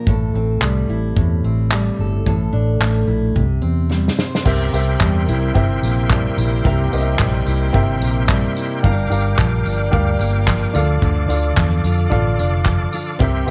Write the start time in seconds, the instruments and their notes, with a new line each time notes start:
Already playing: steel-string acoustic guitar F3 A#3 D4
0.07 fingered electric bass A1, steel-string acoustic guitar A2 A4, kick
0.34 fingered electric bass A1, steel-string acoustic guitar C4
0.61 fingered electric bass C2, steel-string acoustic guitar G3, clap
0.89 fingered electric bass A1, steel-string acoustic guitar E4
1.16 fingered electric bass E2, steel-string acoustic guitar A2, kick
1.44 fingered electric bass A1, steel-string acoustic guitar C4
1.71 steel-string acoustic guitar G3, clap
1.99 fingered electric bass G1, steel-string acoustic guitar A4
2.26 fingered electric bass A1, steel-string acoustic guitar A2 A4, kick
2.53 fingered electric bass A1, steel-string acoustic guitar D4
2.80 fingered electric bass A1, steel-string acoustic guitar A3, clap
3.08 fingered electric bass A#1, steel-string acoustic guitar E4
3.36 fingered electric bass C2, steel-string acoustic guitar C3, kick
3.62 fingered electric bass E2, steel-string acoustic guitar C4
3.90 steel-string acoustic guitar G3, snare
4.08 snare
4.19 steel-string acoustic guitar C5, snare
4.35 snare
4.45 fingered electric bass C2, steel-string acoustic guitar C3 A#4, upright piano C4 G4 A#4 E5, tonewheel organ A#4 E5 G5 C6, kick, crash
4.72 fingered electric bass C2, upright piano C4 G4 A#4 E5, tambourine
5.01 fingered electric bass E2, steel-string acoustic guitar G3, kick, clap
5.28 fingered electric bass C2, steel-string acoustic guitar E4, tambourine
5.54 fingered electric bass G1, steel-string acoustic guitar C3, upright piano C4 G4 A#4 E5, kick
5.83 fingered electric bass A#1, steel-string acoustic guitar A#3, tambourine
6.10 steel-string acoustic guitar G3, kick, clap
6.37 fingered electric bass A#1, steel-string acoustic guitar E4, tambourine
6.64 fingered electric bass C2, steel-string acoustic guitar C3 A#4, upright piano C4 G4 A#4 E5, kick
6.92 fingered electric bass C2, upright piano C4 G4 A#4 D#5, tambourine
7.01 upright piano E5
7.19 fingered electric bass A#1, steel-string acoustic guitar G3, kick, clap
7.46 fingered electric bass C2, steel-string acoustic guitar E4, tambourine
7.73 fingered electric bass G1, steel-string acoustic guitar C3, upright piano C4 G4 A#4 E5, kick
8.00 fingered electric bass A#1, steel-string acoustic guitar A#3, tambourine
8.29 steel-string acoustic guitar G3, kick, clap
8.57 steel-string acoustic guitar E4, tambourine
8.82 fingered electric bass G1, steel-string acoustic guitar G2 A#4, upright piano D4 G4 A#4 F5, tonewheel organ F5 D6, kick
9.10 fingered electric bass G1, upright piano D4 G4 A#4 F5, tambourine
9.39 fingered electric bass A#1, steel-string acoustic guitar F3, kick, clap
9.65 fingered electric bass G1, steel-string acoustic guitar D4, tambourine
9.91 fingered electric bass D2, steel-string acoustic guitar G2, upright piano D4 G4 A#4 F5, kick
10.19 fingered electric bass G1, steel-string acoustic guitar A#3, tambourine
10.48 steel-string acoustic guitar F3, kick, clap
10.73 fingered electric bass D2, steel-string acoustic guitar D3, upright piano D4 F4 A4 F5, tonewheel organ A4 D5 D6, tambourine
11.02 fingered electric bass D2, steel-string acoustic guitar D3 A4, kick
11.28 fingered electric bass D2, upright piano D4 F4 A4 F5, tambourine
11.57 fingered electric bass E2, steel-string acoustic guitar F3, kick, clap
11.84 fingered electric bass F2, steel-string acoustic guitar F4, tambourine
12.10 fingered electric bass A1, steel-string acoustic guitar D3, upright piano D4 F4 A4 F5, kick
12.38 fingered electric bass F1, steel-string acoustic guitar D4, tambourine
12.66 steel-string acoustic guitar F3, kick, clap
12.93 steel-string acoustic guitar F4, tambourine
13.19 fingered electric bass C2, steel-string acoustic guitar C3 G4, upright piano C4 G4 A#4 E5, tonewheel organ A#4 E5 G5 C6, kick
13.46 upright piano C4 G4